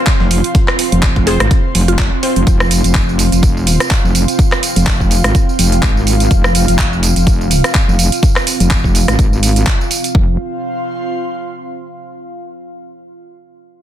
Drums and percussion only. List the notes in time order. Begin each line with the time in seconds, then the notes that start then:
0.07 kick, snare, clap, closed hi-hat
0.20 snare
0.31 closed hi-hat, open hi-hat
0.44 closed hi-hat
0.55 kick, closed hi-hat
0.68 cross-stick, clap
0.79 closed hi-hat, open hi-hat
0.92 closed hi-hat
1.03 kick, snare, clap, closed hi-hat
1.16 kick, closed hi-hat
1.27 snare, closed hi-hat, open hi-hat
1.40 cross-stick, snare, closed hi-hat
1.51 kick, closed hi-hat
1.75 closed hi-hat, open hi-hat
1.88 closed hi-hat
1.99 kick, snare, clap, closed hi-hat
2.23 closed hi-hat, open hi-hat
2.36 closed hi-hat
2.47 kick, closed hi-hat, tambourine
2.60 cross-stick, tambourine
2.71 open hi-hat, tambourine
2.84 closed hi-hat, tambourine
2.95 kick, clap, closed hi-hat, tambourine
3.09 tambourine
3.19 open hi-hat, tambourine
3.32 closed hi-hat, tambourine
3.43 kick, closed hi-hat, tambourine
3.57 tambourine
3.67 open hi-hat, tambourine
3.80 cross-stick, closed hi-hat, tambourine
3.91 kick, clap, closed hi-hat, tambourine
4.05 tambourine
4.15 open hi-hat, tambourine
4.28 closed hi-hat, tambourine
4.39 kick, closed hi-hat, tambourine
4.52 cross-stick, clap, tambourine
4.63 open hi-hat, tambourine
4.76 closed hi-hat, tambourine
4.87 kick, clap, closed hi-hat, tambourine
5.00 kick, tambourine
5.11 open hi-hat, tambourine
5.24 cross-stick, closed hi-hat, tambourine
5.35 kick, closed hi-hat, tambourine
5.49 tambourine
5.59 open hi-hat, tambourine
5.72 closed hi-hat, tambourine
5.83 kick, clap, closed hi-hat, tambourine
5.97 tambourine
6.07 open hi-hat, tambourine
6.20 closed hi-hat, tambourine
6.31 kick, closed hi-hat, tambourine
6.44 cross-stick, tambourine
6.55 open hi-hat, tambourine
6.68 closed hi-hat, tambourine
6.79 kick, clap, closed hi-hat, tambourine
6.93 tambourine
7.03 open hi-hat, tambourine
7.16 closed hi-hat, tambourine
7.27 kick, closed hi-hat, tambourine
7.41 tambourine
7.51 open hi-hat, tambourine
7.64 cross-stick, closed hi-hat, tambourine
7.75 kick, clap, closed hi-hat, tambourine
7.89 tambourine
7.99 open hi-hat, tambourine
8.12 closed hi-hat, tambourine
8.23 kick, closed hi-hat, tambourine
8.36 cross-stick, clap, tambourine
8.47 open hi-hat, tambourine
8.60 closed hi-hat, tambourine
8.71 kick, clap, closed hi-hat, tambourine
8.84 kick, tambourine
8.95 open hi-hat, tambourine
9.08 cross-stick, closed hi-hat, tambourine
9.19 kick, closed hi-hat, tambourine
9.33 tambourine
9.43 open hi-hat, tambourine
9.56 closed hi-hat, tambourine
9.67 kick, clap, closed hi-hat, tambourine
9.81 tambourine
9.91 open hi-hat, tambourine
10.04 closed hi-hat, tambourine
10.15 kick